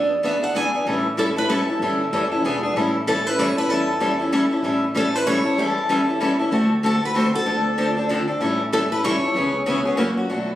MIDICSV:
0, 0, Header, 1, 4, 480
1, 0, Start_track
1, 0, Tempo, 314630
1, 1306, Time_signature, 3, 2, 24, 8
1, 16098, End_track
2, 0, Start_track
2, 0, Title_t, "Steel-string acoustic guitar"
2, 0, Program_c, 0, 25
2, 388, Note_on_c, 0, 76, 62
2, 659, Note_off_c, 0, 76, 0
2, 665, Note_on_c, 0, 78, 73
2, 828, Note_off_c, 0, 78, 0
2, 859, Note_on_c, 0, 80, 96
2, 1290, Note_off_c, 0, 80, 0
2, 1815, Note_on_c, 0, 69, 78
2, 1891, Note_off_c, 0, 69, 0
2, 2110, Note_on_c, 0, 71, 96
2, 2276, Note_off_c, 0, 71, 0
2, 2282, Note_on_c, 0, 69, 85
2, 3655, Note_off_c, 0, 69, 0
2, 4695, Note_on_c, 0, 69, 78
2, 4984, Note_off_c, 0, 69, 0
2, 4984, Note_on_c, 0, 71, 79
2, 5175, Note_off_c, 0, 71, 0
2, 5175, Note_on_c, 0, 73, 101
2, 5452, Note_off_c, 0, 73, 0
2, 5465, Note_on_c, 0, 71, 89
2, 5642, Note_off_c, 0, 71, 0
2, 5642, Note_on_c, 0, 69, 76
2, 6595, Note_off_c, 0, 69, 0
2, 7585, Note_on_c, 0, 69, 83
2, 7865, Note_off_c, 0, 69, 0
2, 7865, Note_on_c, 0, 71, 79
2, 8029, Note_off_c, 0, 71, 0
2, 8035, Note_on_c, 0, 73, 103
2, 8478, Note_off_c, 0, 73, 0
2, 8529, Note_on_c, 0, 69, 69
2, 9417, Note_off_c, 0, 69, 0
2, 10465, Note_on_c, 0, 69, 81
2, 10717, Note_off_c, 0, 69, 0
2, 10760, Note_on_c, 0, 71, 81
2, 10836, Note_off_c, 0, 71, 0
2, 10925, Note_on_c, 0, 72, 95
2, 11206, Note_off_c, 0, 72, 0
2, 11220, Note_on_c, 0, 69, 91
2, 12296, Note_off_c, 0, 69, 0
2, 13323, Note_on_c, 0, 69, 85
2, 13399, Note_off_c, 0, 69, 0
2, 13608, Note_on_c, 0, 71, 82
2, 13684, Note_off_c, 0, 71, 0
2, 13800, Note_on_c, 0, 73, 94
2, 15460, Note_off_c, 0, 73, 0
2, 16098, End_track
3, 0, Start_track
3, 0, Title_t, "Steel-string acoustic guitar"
3, 0, Program_c, 1, 25
3, 0, Note_on_c, 1, 52, 70
3, 0, Note_on_c, 1, 59, 60
3, 0, Note_on_c, 1, 62, 68
3, 0, Note_on_c, 1, 68, 73
3, 172, Note_off_c, 1, 52, 0
3, 176, Note_off_c, 1, 59, 0
3, 181, Note_off_c, 1, 62, 0
3, 181, Note_off_c, 1, 68, 0
3, 352, Note_on_c, 1, 52, 81
3, 357, Note_on_c, 1, 59, 86
3, 362, Note_on_c, 1, 62, 91
3, 372, Note_on_c, 1, 68, 81
3, 515, Note_off_c, 1, 52, 0
3, 517, Note_off_c, 1, 59, 0
3, 520, Note_off_c, 1, 62, 0
3, 525, Note_off_c, 1, 68, 0
3, 653, Note_on_c, 1, 68, 57
3, 665, Note_on_c, 1, 62, 48
3, 679, Note_on_c, 1, 59, 42
3, 825, Note_off_c, 1, 59, 0
3, 827, Note_off_c, 1, 68, 0
3, 833, Note_off_c, 1, 62, 0
3, 836, Note_on_c, 1, 52, 89
3, 844, Note_on_c, 1, 59, 83
3, 852, Note_on_c, 1, 62, 83
3, 854, Note_on_c, 1, 68, 92
3, 997, Note_off_c, 1, 52, 0
3, 1001, Note_off_c, 1, 59, 0
3, 1005, Note_off_c, 1, 62, 0
3, 1006, Note_off_c, 1, 68, 0
3, 1139, Note_on_c, 1, 68, 55
3, 1152, Note_on_c, 1, 62, 53
3, 1162, Note_on_c, 1, 59, 44
3, 1310, Note_off_c, 1, 68, 0
3, 1315, Note_off_c, 1, 59, 0
3, 1316, Note_off_c, 1, 62, 0
3, 1319, Note_on_c, 1, 52, 68
3, 1321, Note_on_c, 1, 61, 65
3, 1326, Note_on_c, 1, 55, 63
3, 1332, Note_on_c, 1, 64, 71
3, 1332, Note_on_c, 1, 69, 76
3, 1619, Note_off_c, 1, 52, 0
3, 1619, Note_off_c, 1, 61, 0
3, 1622, Note_off_c, 1, 55, 0
3, 1625, Note_off_c, 1, 64, 0
3, 1625, Note_off_c, 1, 69, 0
3, 1788, Note_on_c, 1, 52, 80
3, 1798, Note_on_c, 1, 55, 82
3, 1802, Note_on_c, 1, 61, 84
3, 1805, Note_on_c, 1, 64, 90
3, 1812, Note_on_c, 1, 69, 77
3, 1954, Note_off_c, 1, 52, 0
3, 1959, Note_off_c, 1, 55, 0
3, 1961, Note_off_c, 1, 61, 0
3, 1962, Note_off_c, 1, 64, 0
3, 1965, Note_off_c, 1, 69, 0
3, 2080, Note_on_c, 1, 69, 60
3, 2092, Note_on_c, 1, 64, 55
3, 2114, Note_on_c, 1, 61, 49
3, 2261, Note_off_c, 1, 69, 0
3, 2265, Note_off_c, 1, 61, 0
3, 2267, Note_off_c, 1, 64, 0
3, 2277, Note_on_c, 1, 52, 88
3, 2281, Note_on_c, 1, 55, 88
3, 2283, Note_on_c, 1, 61, 99
3, 2294, Note_on_c, 1, 64, 87
3, 2296, Note_on_c, 1, 69, 90
3, 2439, Note_off_c, 1, 52, 0
3, 2441, Note_off_c, 1, 55, 0
3, 2441, Note_off_c, 1, 61, 0
3, 2447, Note_off_c, 1, 64, 0
3, 2448, Note_off_c, 1, 69, 0
3, 2559, Note_on_c, 1, 69, 57
3, 2579, Note_on_c, 1, 64, 48
3, 2589, Note_on_c, 1, 61, 43
3, 2740, Note_off_c, 1, 69, 0
3, 2751, Note_off_c, 1, 64, 0
3, 2756, Note_off_c, 1, 61, 0
3, 2775, Note_on_c, 1, 52, 60
3, 2779, Note_on_c, 1, 55, 66
3, 2785, Note_on_c, 1, 61, 76
3, 2790, Note_on_c, 1, 64, 70
3, 2794, Note_on_c, 1, 69, 69
3, 3067, Note_off_c, 1, 52, 0
3, 3069, Note_off_c, 1, 55, 0
3, 3072, Note_off_c, 1, 61, 0
3, 3075, Note_off_c, 1, 64, 0
3, 3077, Note_off_c, 1, 69, 0
3, 3245, Note_on_c, 1, 52, 77
3, 3246, Note_on_c, 1, 61, 77
3, 3250, Note_on_c, 1, 55, 86
3, 3252, Note_on_c, 1, 64, 73
3, 3260, Note_on_c, 1, 69, 92
3, 3403, Note_off_c, 1, 52, 0
3, 3403, Note_off_c, 1, 61, 0
3, 3405, Note_off_c, 1, 55, 0
3, 3406, Note_off_c, 1, 64, 0
3, 3410, Note_off_c, 1, 69, 0
3, 3534, Note_on_c, 1, 69, 59
3, 3545, Note_on_c, 1, 64, 45
3, 3562, Note_on_c, 1, 61, 51
3, 3708, Note_off_c, 1, 69, 0
3, 3714, Note_off_c, 1, 64, 0
3, 3722, Note_off_c, 1, 61, 0
3, 3728, Note_on_c, 1, 52, 73
3, 3737, Note_on_c, 1, 59, 85
3, 3746, Note_on_c, 1, 68, 94
3, 3747, Note_on_c, 1, 62, 85
3, 3884, Note_off_c, 1, 52, 0
3, 3889, Note_off_c, 1, 59, 0
3, 3893, Note_off_c, 1, 68, 0
3, 3894, Note_off_c, 1, 62, 0
3, 4014, Note_on_c, 1, 68, 51
3, 4034, Note_on_c, 1, 62, 47
3, 4048, Note_on_c, 1, 59, 45
3, 4188, Note_off_c, 1, 68, 0
3, 4198, Note_off_c, 1, 62, 0
3, 4205, Note_off_c, 1, 59, 0
3, 4210, Note_on_c, 1, 52, 61
3, 4214, Note_on_c, 1, 55, 70
3, 4221, Note_on_c, 1, 61, 72
3, 4223, Note_on_c, 1, 64, 69
3, 4223, Note_on_c, 1, 69, 69
3, 4505, Note_off_c, 1, 52, 0
3, 4507, Note_off_c, 1, 55, 0
3, 4510, Note_off_c, 1, 61, 0
3, 4511, Note_off_c, 1, 64, 0
3, 4512, Note_off_c, 1, 69, 0
3, 4688, Note_on_c, 1, 52, 88
3, 4691, Note_on_c, 1, 55, 84
3, 4696, Note_on_c, 1, 61, 90
3, 4697, Note_on_c, 1, 64, 94
3, 4709, Note_on_c, 1, 69, 101
3, 4845, Note_off_c, 1, 52, 0
3, 4846, Note_off_c, 1, 55, 0
3, 4848, Note_off_c, 1, 61, 0
3, 4849, Note_off_c, 1, 64, 0
3, 4855, Note_off_c, 1, 69, 0
3, 4976, Note_on_c, 1, 69, 59
3, 4991, Note_on_c, 1, 64, 50
3, 5008, Note_on_c, 1, 61, 43
3, 5150, Note_off_c, 1, 69, 0
3, 5153, Note_off_c, 1, 61, 0
3, 5157, Note_off_c, 1, 64, 0
3, 5169, Note_on_c, 1, 55, 91
3, 5170, Note_on_c, 1, 52, 88
3, 5171, Note_on_c, 1, 61, 92
3, 5178, Note_on_c, 1, 64, 88
3, 5186, Note_on_c, 1, 69, 97
3, 5325, Note_off_c, 1, 52, 0
3, 5325, Note_off_c, 1, 55, 0
3, 5326, Note_off_c, 1, 61, 0
3, 5329, Note_off_c, 1, 64, 0
3, 5333, Note_off_c, 1, 69, 0
3, 5451, Note_on_c, 1, 69, 61
3, 5468, Note_on_c, 1, 64, 53
3, 5480, Note_on_c, 1, 61, 48
3, 5617, Note_off_c, 1, 61, 0
3, 5627, Note_off_c, 1, 69, 0
3, 5628, Note_on_c, 1, 52, 65
3, 5630, Note_off_c, 1, 64, 0
3, 5634, Note_on_c, 1, 55, 65
3, 5636, Note_on_c, 1, 61, 71
3, 5647, Note_on_c, 1, 69, 76
3, 5649, Note_on_c, 1, 64, 79
3, 5934, Note_off_c, 1, 52, 0
3, 5937, Note_off_c, 1, 55, 0
3, 5938, Note_off_c, 1, 61, 0
3, 5943, Note_off_c, 1, 69, 0
3, 5944, Note_off_c, 1, 64, 0
3, 6106, Note_on_c, 1, 52, 82
3, 6112, Note_on_c, 1, 55, 95
3, 6119, Note_on_c, 1, 61, 86
3, 6121, Note_on_c, 1, 64, 91
3, 6121, Note_on_c, 1, 69, 94
3, 6274, Note_off_c, 1, 52, 0
3, 6276, Note_off_c, 1, 55, 0
3, 6280, Note_off_c, 1, 61, 0
3, 6281, Note_off_c, 1, 64, 0
3, 6281, Note_off_c, 1, 69, 0
3, 6404, Note_on_c, 1, 69, 59
3, 6419, Note_on_c, 1, 64, 52
3, 6434, Note_on_c, 1, 61, 47
3, 6583, Note_off_c, 1, 69, 0
3, 6586, Note_off_c, 1, 61, 0
3, 6588, Note_off_c, 1, 64, 0
3, 6597, Note_on_c, 1, 52, 88
3, 6600, Note_on_c, 1, 55, 94
3, 6605, Note_on_c, 1, 61, 95
3, 6606, Note_on_c, 1, 64, 93
3, 6612, Note_on_c, 1, 69, 96
3, 6759, Note_off_c, 1, 52, 0
3, 6760, Note_off_c, 1, 55, 0
3, 6763, Note_off_c, 1, 61, 0
3, 6763, Note_off_c, 1, 64, 0
3, 6767, Note_off_c, 1, 69, 0
3, 6881, Note_on_c, 1, 69, 59
3, 6899, Note_on_c, 1, 64, 52
3, 6909, Note_on_c, 1, 61, 50
3, 7062, Note_off_c, 1, 61, 0
3, 7062, Note_off_c, 1, 69, 0
3, 7066, Note_off_c, 1, 64, 0
3, 7069, Note_on_c, 1, 52, 56
3, 7079, Note_on_c, 1, 55, 73
3, 7081, Note_on_c, 1, 61, 61
3, 7084, Note_on_c, 1, 64, 73
3, 7093, Note_on_c, 1, 69, 73
3, 7374, Note_off_c, 1, 52, 0
3, 7379, Note_off_c, 1, 55, 0
3, 7380, Note_off_c, 1, 61, 0
3, 7382, Note_off_c, 1, 64, 0
3, 7386, Note_off_c, 1, 69, 0
3, 7545, Note_on_c, 1, 52, 77
3, 7556, Note_on_c, 1, 55, 94
3, 7559, Note_on_c, 1, 61, 98
3, 7567, Note_on_c, 1, 64, 96
3, 7572, Note_on_c, 1, 69, 86
3, 7713, Note_off_c, 1, 52, 0
3, 7718, Note_off_c, 1, 55, 0
3, 7720, Note_off_c, 1, 61, 0
3, 7724, Note_off_c, 1, 64, 0
3, 7726, Note_off_c, 1, 69, 0
3, 7844, Note_on_c, 1, 69, 67
3, 7860, Note_on_c, 1, 64, 54
3, 7874, Note_on_c, 1, 61, 52
3, 8023, Note_off_c, 1, 69, 0
3, 8027, Note_off_c, 1, 61, 0
3, 8031, Note_off_c, 1, 64, 0
3, 8038, Note_on_c, 1, 52, 92
3, 8039, Note_on_c, 1, 55, 93
3, 8045, Note_on_c, 1, 61, 90
3, 8052, Note_on_c, 1, 64, 87
3, 8052, Note_on_c, 1, 69, 100
3, 8199, Note_off_c, 1, 52, 0
3, 8199, Note_off_c, 1, 55, 0
3, 8203, Note_off_c, 1, 61, 0
3, 8206, Note_off_c, 1, 64, 0
3, 8206, Note_off_c, 1, 69, 0
3, 8307, Note_on_c, 1, 69, 56
3, 8320, Note_on_c, 1, 64, 62
3, 8333, Note_on_c, 1, 61, 44
3, 8495, Note_off_c, 1, 69, 0
3, 8497, Note_off_c, 1, 61, 0
3, 8501, Note_off_c, 1, 64, 0
3, 8509, Note_on_c, 1, 52, 55
3, 8513, Note_on_c, 1, 55, 66
3, 8515, Note_on_c, 1, 61, 67
3, 8517, Note_on_c, 1, 64, 69
3, 8524, Note_on_c, 1, 69, 66
3, 8814, Note_off_c, 1, 52, 0
3, 8816, Note_off_c, 1, 55, 0
3, 8817, Note_off_c, 1, 61, 0
3, 8818, Note_off_c, 1, 64, 0
3, 8822, Note_off_c, 1, 69, 0
3, 8987, Note_on_c, 1, 52, 83
3, 8989, Note_on_c, 1, 55, 81
3, 8996, Note_on_c, 1, 61, 92
3, 9004, Note_on_c, 1, 64, 94
3, 9007, Note_on_c, 1, 69, 86
3, 9153, Note_off_c, 1, 52, 0
3, 9154, Note_off_c, 1, 55, 0
3, 9158, Note_off_c, 1, 61, 0
3, 9162, Note_off_c, 1, 64, 0
3, 9164, Note_off_c, 1, 69, 0
3, 9273, Note_on_c, 1, 69, 53
3, 9289, Note_on_c, 1, 64, 51
3, 9307, Note_on_c, 1, 61, 53
3, 9455, Note_off_c, 1, 61, 0
3, 9457, Note_off_c, 1, 69, 0
3, 9465, Note_off_c, 1, 64, 0
3, 9465, Note_on_c, 1, 52, 72
3, 9469, Note_on_c, 1, 55, 90
3, 9474, Note_on_c, 1, 61, 93
3, 9481, Note_on_c, 1, 69, 97
3, 9483, Note_on_c, 1, 64, 97
3, 9632, Note_off_c, 1, 52, 0
3, 9634, Note_off_c, 1, 55, 0
3, 9637, Note_off_c, 1, 61, 0
3, 9640, Note_off_c, 1, 69, 0
3, 9641, Note_off_c, 1, 64, 0
3, 9753, Note_on_c, 1, 69, 57
3, 9766, Note_on_c, 1, 64, 54
3, 9780, Note_on_c, 1, 61, 49
3, 9936, Note_on_c, 1, 50, 60
3, 9937, Note_off_c, 1, 69, 0
3, 9944, Note_off_c, 1, 61, 0
3, 9944, Note_off_c, 1, 64, 0
3, 9944, Note_on_c, 1, 57, 65
3, 9950, Note_on_c, 1, 60, 73
3, 9953, Note_on_c, 1, 66, 73
3, 9957, Note_on_c, 1, 69, 78
3, 10247, Note_off_c, 1, 50, 0
3, 10251, Note_off_c, 1, 57, 0
3, 10254, Note_off_c, 1, 60, 0
3, 10256, Note_off_c, 1, 66, 0
3, 10257, Note_off_c, 1, 69, 0
3, 10422, Note_on_c, 1, 50, 78
3, 10423, Note_on_c, 1, 57, 81
3, 10429, Note_on_c, 1, 60, 82
3, 10438, Note_on_c, 1, 66, 97
3, 10438, Note_on_c, 1, 69, 95
3, 10591, Note_off_c, 1, 50, 0
3, 10591, Note_off_c, 1, 57, 0
3, 10594, Note_off_c, 1, 60, 0
3, 10598, Note_off_c, 1, 66, 0
3, 10598, Note_off_c, 1, 69, 0
3, 10712, Note_on_c, 1, 69, 64
3, 10732, Note_on_c, 1, 66, 53
3, 10740, Note_on_c, 1, 60, 50
3, 10890, Note_off_c, 1, 60, 0
3, 10897, Note_off_c, 1, 69, 0
3, 10898, Note_off_c, 1, 66, 0
3, 10898, Note_on_c, 1, 50, 82
3, 10905, Note_on_c, 1, 57, 86
3, 10908, Note_on_c, 1, 60, 97
3, 10916, Note_on_c, 1, 66, 99
3, 10924, Note_on_c, 1, 69, 97
3, 11068, Note_off_c, 1, 50, 0
3, 11072, Note_off_c, 1, 57, 0
3, 11073, Note_off_c, 1, 60, 0
3, 11077, Note_off_c, 1, 66, 0
3, 11082, Note_off_c, 1, 69, 0
3, 11189, Note_on_c, 1, 69, 51
3, 11207, Note_on_c, 1, 66, 56
3, 11218, Note_on_c, 1, 60, 45
3, 11365, Note_off_c, 1, 60, 0
3, 11375, Note_off_c, 1, 69, 0
3, 11377, Note_on_c, 1, 53, 71
3, 11383, Note_on_c, 1, 50, 63
3, 11383, Note_on_c, 1, 60, 67
3, 11384, Note_off_c, 1, 66, 0
3, 11391, Note_on_c, 1, 62, 70
3, 11394, Note_on_c, 1, 69, 73
3, 11687, Note_off_c, 1, 53, 0
3, 11690, Note_off_c, 1, 50, 0
3, 11690, Note_off_c, 1, 60, 0
3, 11694, Note_off_c, 1, 62, 0
3, 11696, Note_off_c, 1, 69, 0
3, 11863, Note_on_c, 1, 50, 75
3, 11867, Note_on_c, 1, 53, 75
3, 11867, Note_on_c, 1, 60, 95
3, 11873, Note_on_c, 1, 62, 86
3, 11875, Note_on_c, 1, 69, 105
3, 12031, Note_off_c, 1, 50, 0
3, 12033, Note_off_c, 1, 53, 0
3, 12033, Note_off_c, 1, 60, 0
3, 12035, Note_off_c, 1, 62, 0
3, 12037, Note_off_c, 1, 69, 0
3, 12156, Note_on_c, 1, 69, 57
3, 12177, Note_on_c, 1, 62, 55
3, 12189, Note_on_c, 1, 60, 48
3, 12338, Note_off_c, 1, 69, 0
3, 12340, Note_off_c, 1, 60, 0
3, 12344, Note_off_c, 1, 62, 0
3, 12346, Note_on_c, 1, 50, 92
3, 12351, Note_on_c, 1, 53, 93
3, 12358, Note_on_c, 1, 60, 92
3, 12361, Note_on_c, 1, 69, 88
3, 12362, Note_on_c, 1, 62, 94
3, 12512, Note_off_c, 1, 50, 0
3, 12515, Note_off_c, 1, 53, 0
3, 12518, Note_off_c, 1, 60, 0
3, 12519, Note_off_c, 1, 69, 0
3, 12520, Note_off_c, 1, 62, 0
3, 12626, Note_on_c, 1, 69, 61
3, 12641, Note_on_c, 1, 62, 53
3, 12651, Note_on_c, 1, 60, 44
3, 12813, Note_off_c, 1, 69, 0
3, 12820, Note_off_c, 1, 62, 0
3, 12823, Note_on_c, 1, 52, 71
3, 12825, Note_on_c, 1, 55, 59
3, 12826, Note_off_c, 1, 60, 0
3, 12835, Note_on_c, 1, 61, 71
3, 12837, Note_on_c, 1, 64, 73
3, 12843, Note_on_c, 1, 69, 78
3, 13130, Note_off_c, 1, 52, 0
3, 13131, Note_off_c, 1, 55, 0
3, 13135, Note_off_c, 1, 61, 0
3, 13137, Note_off_c, 1, 64, 0
3, 13140, Note_off_c, 1, 69, 0
3, 13311, Note_on_c, 1, 52, 86
3, 13319, Note_on_c, 1, 55, 83
3, 13324, Note_on_c, 1, 61, 95
3, 13330, Note_on_c, 1, 69, 100
3, 13331, Note_on_c, 1, 64, 96
3, 13474, Note_off_c, 1, 52, 0
3, 13478, Note_off_c, 1, 55, 0
3, 13481, Note_off_c, 1, 61, 0
3, 13483, Note_off_c, 1, 69, 0
3, 13484, Note_off_c, 1, 64, 0
3, 13608, Note_on_c, 1, 69, 63
3, 13626, Note_on_c, 1, 64, 54
3, 13641, Note_on_c, 1, 61, 50
3, 13784, Note_off_c, 1, 69, 0
3, 13786, Note_off_c, 1, 61, 0
3, 13792, Note_off_c, 1, 64, 0
3, 13794, Note_on_c, 1, 52, 101
3, 13804, Note_on_c, 1, 61, 95
3, 13805, Note_on_c, 1, 55, 93
3, 13814, Note_on_c, 1, 64, 97
3, 13820, Note_on_c, 1, 69, 95
3, 13955, Note_off_c, 1, 52, 0
3, 13960, Note_off_c, 1, 61, 0
3, 13961, Note_off_c, 1, 55, 0
3, 13965, Note_off_c, 1, 64, 0
3, 13968, Note_off_c, 1, 69, 0
3, 14095, Note_on_c, 1, 69, 59
3, 14115, Note_on_c, 1, 64, 53
3, 14127, Note_on_c, 1, 61, 47
3, 14267, Note_off_c, 1, 69, 0
3, 14274, Note_off_c, 1, 61, 0
3, 14276, Note_on_c, 1, 49, 68
3, 14277, Note_off_c, 1, 64, 0
3, 14286, Note_on_c, 1, 52, 66
3, 14289, Note_on_c, 1, 59, 62
3, 14293, Note_on_c, 1, 61, 68
3, 14297, Note_on_c, 1, 68, 70
3, 14575, Note_off_c, 1, 49, 0
3, 14581, Note_off_c, 1, 52, 0
3, 14582, Note_off_c, 1, 59, 0
3, 14584, Note_off_c, 1, 61, 0
3, 14586, Note_off_c, 1, 68, 0
3, 14738, Note_on_c, 1, 49, 84
3, 14742, Note_on_c, 1, 52, 95
3, 14750, Note_on_c, 1, 59, 88
3, 14754, Note_on_c, 1, 61, 91
3, 14761, Note_on_c, 1, 68, 89
3, 14907, Note_off_c, 1, 49, 0
3, 14909, Note_off_c, 1, 52, 0
3, 14913, Note_off_c, 1, 59, 0
3, 14915, Note_off_c, 1, 61, 0
3, 14918, Note_off_c, 1, 68, 0
3, 15032, Note_on_c, 1, 68, 52
3, 15052, Note_on_c, 1, 61, 53
3, 15062, Note_on_c, 1, 59, 45
3, 15208, Note_off_c, 1, 61, 0
3, 15212, Note_on_c, 1, 52, 92
3, 15213, Note_on_c, 1, 49, 82
3, 15214, Note_off_c, 1, 59, 0
3, 15215, Note_off_c, 1, 68, 0
3, 15220, Note_on_c, 1, 58, 97
3, 15227, Note_on_c, 1, 61, 107
3, 15231, Note_on_c, 1, 66, 92
3, 15384, Note_off_c, 1, 49, 0
3, 15384, Note_off_c, 1, 52, 0
3, 15388, Note_off_c, 1, 58, 0
3, 15391, Note_off_c, 1, 61, 0
3, 15393, Note_off_c, 1, 66, 0
3, 15519, Note_on_c, 1, 66, 63
3, 15529, Note_on_c, 1, 61, 57
3, 15546, Note_on_c, 1, 58, 45
3, 15698, Note_off_c, 1, 66, 0
3, 15703, Note_off_c, 1, 61, 0
3, 15707, Note_off_c, 1, 58, 0
3, 15707, Note_on_c, 1, 47, 65
3, 15708, Note_on_c, 1, 54, 69
3, 15713, Note_on_c, 1, 57, 65
3, 15723, Note_on_c, 1, 62, 72
3, 15724, Note_on_c, 1, 66, 74
3, 16010, Note_off_c, 1, 47, 0
3, 16011, Note_off_c, 1, 54, 0
3, 16013, Note_off_c, 1, 57, 0
3, 16019, Note_off_c, 1, 62, 0
3, 16019, Note_off_c, 1, 66, 0
3, 16098, End_track
4, 0, Start_track
4, 0, Title_t, "Upright bass"
4, 0, Program_c, 2, 32
4, 0, Note_on_c, 2, 40, 82
4, 1015, Note_off_c, 2, 40, 0
4, 1302, Note_on_c, 2, 33, 80
4, 2457, Note_off_c, 2, 33, 0
4, 2735, Note_on_c, 2, 31, 80
4, 3149, Note_off_c, 2, 31, 0
4, 3217, Note_on_c, 2, 30, 72
4, 3630, Note_off_c, 2, 30, 0
4, 3693, Note_on_c, 2, 28, 76
4, 4083, Note_off_c, 2, 28, 0
4, 4169, Note_on_c, 2, 33, 86
4, 5329, Note_off_c, 2, 33, 0
4, 5612, Note_on_c, 2, 40, 80
4, 6770, Note_off_c, 2, 40, 0
4, 7057, Note_on_c, 2, 33, 85
4, 8213, Note_off_c, 2, 33, 0
4, 8498, Note_on_c, 2, 40, 77
4, 9653, Note_off_c, 2, 40, 0
4, 9934, Note_on_c, 2, 38, 87
4, 11091, Note_off_c, 2, 38, 0
4, 11375, Note_on_c, 2, 38, 88
4, 12531, Note_off_c, 2, 38, 0
4, 12819, Note_on_c, 2, 33, 83
4, 13973, Note_off_c, 2, 33, 0
4, 14258, Note_on_c, 2, 37, 90
4, 15028, Note_off_c, 2, 37, 0
4, 15221, Note_on_c, 2, 42, 71
4, 15605, Note_off_c, 2, 42, 0
4, 15701, Note_on_c, 2, 35, 82
4, 16086, Note_off_c, 2, 35, 0
4, 16098, End_track
0, 0, End_of_file